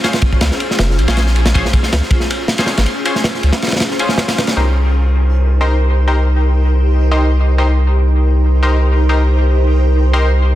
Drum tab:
RD |x-x-x---x---x---x---x-x-x---x-x-|x---x---x---x---x---x-x-x-x-x---|x---x---x-x-xxxxx---x---x-x-x-x-|--------------------------------|
SD |o-o-----o-o---o-o-o---o-o-o---o-|--o---o-o-o---o-----o-o-o-o-----|--o-o-o---o-ooooo-o---o-o-o-o-o-|--------------------------------|
BD |----o-o-------------------------|o---o-------o-------------------|--------------------------------|--------------------------------|

RD |--------------------------------|--------------------------------|--------------------------------|
SD |--------------------------------|--------------------------------|--------------------------------|
BD |--------------------------------|--------------------------------|--------------------------------|